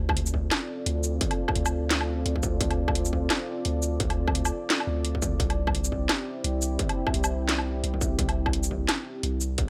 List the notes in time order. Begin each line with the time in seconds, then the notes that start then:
Already playing: D2 C4 F4 A4 D5
0.09 kick, low woodblock
0.17 closed hi-hat
0.26 shaker
0.34 kick
0.51 snare, closed hi-hat, low woodblock
0.86 D2, closed hi-hat
1.03 shaker
1.21 kick, closed hi-hat
1.31 closed hi-hat, low woodblock
1.48 kick, low woodblock
1.56 D2, closed hi-hat
1.66 low woodblock, shaker
1.91 snare, closed hi-hat
2.01 low woodblock
2.26 D2, closed hi-hat
2.36 kick
2.43 kick, shaker
2.61 D2, kick, closed hi-hat
2.71 closed hi-hat, low woodblock
2.88 kick, low woodblock
2.95 closed hi-hat
3.05 shaker
3.13 kick
3.30 snare, closed hi-hat, low woodblock
3.65 D2, closed hi-hat
3.82 shaker
4.00 D2, kick, closed hi-hat
4.10 closed hi-hat, low woodblock
4.28 kick, low woodblock
4.35 closed hi-hat
4.45 low woodblock, shaker
4.70 snare, closed hi-hat
4.80 low woodblock
4.87 D2
5.05 closed hi-hat
5.15 kick
5.22 kick, shaker
5.40 C2 C4 E4 G4, kick, closed hi-hat
5.50 closed hi-hat, low woodblock
5.67 kick, low woodblock
5.75 closed hi-hat
5.84 shaker
5.92 kick
6.09 snare, closed hi-hat, low woodblock
6.44 C2, closed hi-hat
6.62 shaker
6.79 kick, closed hi-hat
6.89 closed hi-hat, low woodblock
7.07 kick, low woodblock
7.14 C2, closed hi-hat
7.24 low woodblock, shaker
7.49 snare, closed hi-hat
7.58 low woodblock
7.84 C2, closed hi-hat
7.94 kick
8.01 kick, shaker
8.19 C2, kick, closed hi-hat
8.29 closed hi-hat, low woodblock
8.46 kick, low woodblock
8.53 closed hi-hat
8.63 shaker
8.71 kick
8.89 snare, closed hi-hat, low woodblock
9.23 C2, closed hi-hat
9.41 shaker
9.58 C2, kick, closed hi-hat